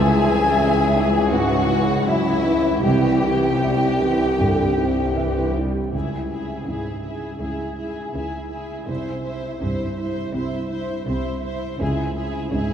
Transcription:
Already playing: grand piano C#2, double bass section C#2, cello section C#2, viola section E3 E5, violin section G#4 G#5, clarinet G#4
0.21 viola section E3, grand piano E4
0.58 viola section E3, grand piano E5
0.96 grand piano E4
1.31 grand piano G#2, violin section F#4 F#5, viola section F#4, clarinet F#4
1.69 grand piano E4, viola section E4
2.06 viola section F#3, violin section E4 E5, clarinet E4, grand piano E5
2.44 viola section E3, grand piano E4
2.83 grand piano C2, double bass section C2, cello section C2, viola section E3 E4, clarinet G4, violin section G4 G5
3.24 grand piano E4
3.63 viola section G3, grand piano E5
4.01 viola section E3, grand piano E4
4.39 grand piano G2, viola section D3
4.78 viola section C3, grand piano E4
5.16 viola section E3, grand piano E5
5.54 viola section G3, grand piano E4
5.92 double bass section C#2, grand piano C#2, cello section C#3, viola section E4, violin section G#4 E5
6.31 viola section E4, violin section G#4 E5
6.67 double bass section C#2, grand piano G#2, cello section C#3, viola section E4, violin section G#4 E5
7.04 viola section E4, violin section G#4 E5
7.41 double bass section C#2, cello section C#3, viola section E4, violin section G#4 E5
7.77 viola section E4, violin section G#4 E5
8.13 double bass section C#2, cello section C#3, viola section E4, violin section G#4 E5
8.50 viola section E4, violin section G#4 E5
8.88 double bass section C2, grand piano C2, cello section C3, viola section E4, violin section C5 E5
9.23 viola section E4, violin section C5 E5
9.60 double bass section C2, grand piano G2, cello section C3, viola section E4, violin section C5 E5
9.96 viola section E4, violin section C5 E5
10.35 double bass section C2, cello section C3, viola section E4, violin section C5 E5
10.70 viola section E4, violin section C5 E5
11.07 double bass section C2, cello section C3, viola section E4, violin section C5 E5
11.43 viola section E4, violin section C5 E5
11.79 double bass section C#2, grand piano C#2, cello section C#3, viola section E4, violin section G#4 E5
12.16 viola section E4, violin section G#4 E5
12.52 double bass section C#2, grand piano G#2, cello section C#3, viola section E4, violin section G#4 E5

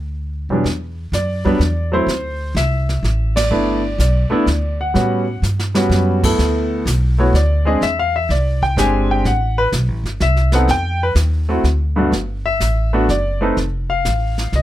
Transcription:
Already playing: upright bass D2
0.49 grand piano E2 F#3 G3 B3 D4, upright bass B2
0.64 upright bass E2, brush sweep, snare
1.12 upright bass F#2, grand piano D5, snare, hi-hat pedal
1.45 grand piano F#3 G3 B3 D4, kick
1.59 upright bass E2, snare
1.92 grand piano F#3 A3 C4 E4 C5
2.07 upright bass D2, brush sweep, snare
2.55 upright bass C2, grand piano E5, snare, hi-hat pedal
2.89 snare
3.03 upright bass A1, snare
3.36 grand piano D5, snare, ride
3.51 upright bass G1, grand piano A3 B3 D4 E4, brush sweep
3.98 upright bass B1, grand piano D5, snare, hi-hat pedal
4.30 grand piano A3 B3 D4 E4, muted upright bass stroke
4.46 upright bass D2, snare
4.81 grand piano F#5
4.94 upright bass A2, grand piano G3 B3 C#4 F#4, brush sweep, snare
5.42 upright bass G2, snare, hi-hat pedal
5.59 snare
5.75 grand piano G3 B3 C#4 F#4, snare
5.89 upright bass F#2, snare
6.23 grand piano A3 B3 E4 A4, kick, crash
6.38 upright bass D2, brush sweep, snare
6.85 upright bass B1, snare, hi-hat pedal
7.18 grand piano A3 B3 E4 F#4 C#5
7.33 upright bass D2, grand piano D5, snare
7.65 grand piano G#3 C4 D4 G#4 D#5
7.81 upright bass E2, grand piano E5, brush sweep, snare
7.99 grand piano F5
8.16 grand piano E5
8.29 upright bass C2, grand piano D5, snare
8.62 grand piano G5, kick
8.76 upright bass G1, grand piano G#3 C4 D4 G4 G#5, snare, hi-hat pedal
9.11 grand piano G5
9.24 upright bass A1, grand piano F#5, brush sweep, snare
9.58 grand piano B4
9.72 upright bass B1, snare, hi-hat pedal
9.88 upright bass A1
10.04 upright bass G1, snare
10.20 upright bass C2, grand piano E5, snare
10.37 snare
10.52 grand piano B3 C4 D#4 A4 F#5, snare
10.68 upright bass F2, grand piano G5, brush sweep, snare
11.03 grand piano B4
11.15 upright bass D#2, snare, hi-hat pedal
11.49 grand piano A3 C4 E4 F#4
11.64 upright bass D2, snare
11.96 grand piano G2 A3 B3 D4 F#4
12.12 upright bass G1, brush sweep, snare
12.46 grand piano E5
12.60 upright bass A1, snare, hi-hat pedal
12.93 grand piano A3 B3 D4 F#4
13.09 upright bass F#1, grand piano D5, snare
13.41 grand piano A3 C4 D#4 A4 B4
13.57 upright bass F1, brush sweep, snare
13.90 grand piano F5
14.05 upright bass A1, snare, hi-hat pedal
14.38 snare
14.52 upright bass C2, grand piano D#5, snare

